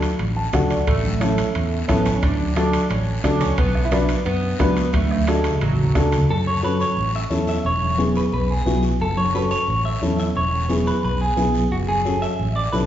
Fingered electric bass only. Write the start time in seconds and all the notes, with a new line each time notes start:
0.19 A1
0.53 D2
0.87 A1
1.55 E2
1.89 A1
2.23 D2
2.91 A1
3.24 D2
3.58 B1
4.25 F#2
4.60 C#2
4.94 D2
5.61 A1
5.95 D2
6.29 F#2
6.97 A1
7.31 E2
7.65 E1
8.32 B1
8.66 B1
9.00 F#1
9.68 A1
10.02 E2
10.36 E1
11.04 B1
11.38 B1
11.72 F#1
12.39 A1
12.73 B1